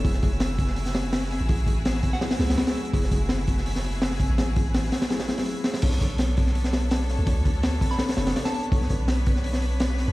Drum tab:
CC |----------------|----------------|----------------|----------------|
HH |o-o-o-o-o-o-o-o-|o-o-o-o-ooooooox|o-o-o-o-o-o-o-o-|o-o-o-ooooooo-oo|
SD |-o--o--o-oo-ooo-|----oo-ooooooo--|-o--o--o-o--oo--|o---oooooooo--oo|
BD |o-o---o---------|o-o---o---------|o-o---o-------o-|--o-------------|

CC |x---------------|----------------|----------------|
HH |o-o-o-o-o-o-o-o-|o-o-o-o-ooooooox|o-o-o-o-o-o-o-o-|
SD |-o--o--o-oo-ooo-|----oo-ooooooo--|-o--o--o-o--ooo-|
BD |o-o---o---------|o-o---o---------|o-o---o---------|